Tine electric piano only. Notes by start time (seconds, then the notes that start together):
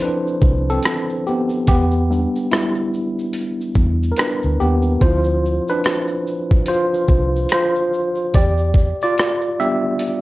Already playing: F3 C4 D4 E4 A4 B4 C5
0.02 D4 B4
0.70 C4 A4
1.27 B3 G4
1.68 B3 G4
2.10 G3 B3 D4
2.51 G3 E4
4.11 A#4
4.18 D4 B4
4.60 B3 G4
5.02 F3 C4 E4 F4 C5
5.70 D4 B4
6.68 F4 C5
7.53 F4 C5
8.35 G4 D5
9.03 F4 D5
9.59 G3 B3 D4 G4 E5